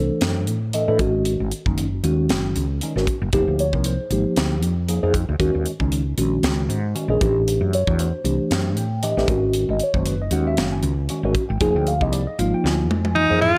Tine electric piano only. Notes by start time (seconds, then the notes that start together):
Already playing: E3 A3 D4 A4 C5
0.74 E3 A3 D4 A4 D#5
0.88 E3 A3 D4 A4
1.00 D#3 G#3 C#4 F#4
1.66 D#3 G#3 C#4 D#4
1.93 C#4 F#4
2.04 D#3 G#3 C#4 F#4
2.83 D#3 G#3 C#4 D#4
2.97 D#3 G#3 C#4 F#4
3.10 F#4
3.33 F3 A#3 D#4 G4
3.60 C#5
3.75 F3 A#3 D#4 A#4
3.86 C5
4.00 D#4 G#4
4.12 F3 A#3 D#4 G4
4.88 F3 A#3 D#4 G#4
5.03 F3 A#3 D#4 G#4
5.14 D#4 F4
5.39 D#3 G#3 C#4 F#4
5.80 D#3 G#3 C#4 D#4
6.06 C#4 D#4
6.17 D#3 G#3 C#4 F#4
6.95 D#3 G#3 C#4 F#4
7.10 D#3 G#3 C#4 G#4
7.21 E3 A3 D4 G4
7.75 C#5
7.88 E3 A3 D4 F#4
8.00 C5
8.13 D4 F#4
8.24 E3 A3 D4 G4
8.77 G5
9.03 E3 A3 D4 G4 D#5
9.17 E3 A3 D4 G4
9.29 D#3 G#3 C#4 F#4
9.71 D#5
9.83 C#5
9.95 D#3 G#3 C#4 F#4 C5
10.07 B4
10.21 C#4 D#4 D#5
10.32 D#3 G#3 C#4 F#4 F#5
10.47 E5
10.58 F5
10.72 G#5
11.10 D#3 G#3 C#4 F#4
11.25 D#3 G#3 C#4 F#4
11.35 C#4 F#4
11.49 G5
11.61 F3 A#3 D#4 G#4 G#5
11.76 G5
11.88 F5
12.01 F3 A#3 D#4 G4 D#5
12.12 D5
12.27 D#4 G#4 D#5
12.39 F3 A#3 D#4 F4 F5
12.54 G5
12.66 G#5
13.16 F3 A#3 D#4 F4
13.30 F3 A#3 D#4 G#4
13.42 D#4 G#4